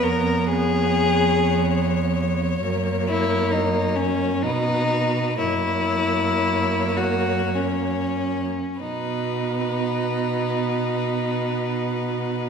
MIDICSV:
0, 0, Header, 1, 5, 480
1, 0, Start_track
1, 0, Key_signature, 5, "major"
1, 0, Tempo, 854701
1, 23, Time_signature, 3, 2, 24, 8
1, 983, Tempo, 892857
1, 2423, Tempo, 961538
1, 2903, Tempo, 1034483
1, 3383, Tempo, 1125704
1, 3863, Tempo, 1244813
1, 5769, End_track
2, 0, Start_track
2, 0, Title_t, "Violin"
2, 0, Program_c, 0, 40
2, 12, Note_on_c, 0, 73, 55
2, 2396, Note_off_c, 0, 73, 0
2, 2437, Note_on_c, 0, 71, 57
2, 2890, Note_off_c, 0, 71, 0
2, 2901, Note_on_c, 0, 73, 50
2, 4222, Note_off_c, 0, 73, 0
2, 4347, Note_on_c, 0, 71, 43
2, 5769, Note_off_c, 0, 71, 0
2, 5769, End_track
3, 0, Start_track
3, 0, Title_t, "Violin"
3, 0, Program_c, 1, 40
3, 18, Note_on_c, 1, 70, 86
3, 261, Note_on_c, 1, 68, 96
3, 269, Note_off_c, 1, 70, 0
3, 1219, Note_off_c, 1, 68, 0
3, 1698, Note_on_c, 1, 64, 83
3, 1930, Note_on_c, 1, 63, 74
3, 1938, Note_off_c, 1, 64, 0
3, 2170, Note_on_c, 1, 61, 76
3, 2178, Note_off_c, 1, 63, 0
3, 2422, Note_on_c, 1, 63, 93
3, 2430, Note_off_c, 1, 61, 0
3, 2898, Note_off_c, 1, 63, 0
3, 2901, Note_on_c, 1, 64, 87
3, 3614, Note_on_c, 1, 66, 69
3, 3621, Note_off_c, 1, 64, 0
3, 3860, Note_on_c, 1, 61, 63
3, 3866, Note_off_c, 1, 66, 0
3, 4347, Note_off_c, 1, 61, 0
3, 4353, Note_on_c, 1, 63, 60
3, 5769, Note_off_c, 1, 63, 0
3, 5769, End_track
4, 0, Start_track
4, 0, Title_t, "Viola"
4, 0, Program_c, 2, 41
4, 0, Note_on_c, 2, 59, 58
4, 1437, Note_off_c, 2, 59, 0
4, 1457, Note_on_c, 2, 58, 59
4, 2401, Note_off_c, 2, 58, 0
4, 2423, Note_on_c, 2, 59, 55
4, 2883, Note_off_c, 2, 59, 0
4, 2901, Note_on_c, 2, 58, 56
4, 4222, Note_off_c, 2, 58, 0
4, 4346, Note_on_c, 2, 59, 46
4, 5769, Note_off_c, 2, 59, 0
4, 5769, End_track
5, 0, Start_track
5, 0, Title_t, "Cello"
5, 0, Program_c, 3, 42
5, 20, Note_on_c, 3, 41, 64
5, 1434, Note_off_c, 3, 41, 0
5, 1462, Note_on_c, 3, 42, 62
5, 2427, Note_on_c, 3, 47, 54
5, 2435, Note_off_c, 3, 42, 0
5, 2902, Note_on_c, 3, 42, 56
5, 2909, Note_off_c, 3, 47, 0
5, 4238, Note_off_c, 3, 42, 0
5, 4350, Note_on_c, 3, 47, 46
5, 5769, Note_off_c, 3, 47, 0
5, 5769, End_track
0, 0, End_of_file